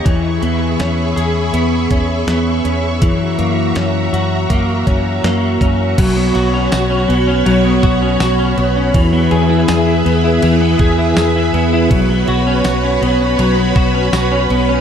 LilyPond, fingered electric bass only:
\new Staff \with { instrumentName = "Fingered electric bass" } { \clef bass \time 4/4 \key e \lydian \tempo 4 = 81 e,8 e,8 e,8 e,8 e,8 e,8 e,8 e,8 | fis,8 fis,8 fis,8 fis,8 fis,8 fis,8 fis,8 fis,8 | b,,8 b,,8 b,,8 b,,8 b,,8 b,,8 b,,8 b,,8 | e,8 e,8 e,8 e,8 e,8 e,8 e,8 e,8 |
b,,8 b,,8 b,,8 b,,8 b,,8 b,,8 b,,8 b,,8 | }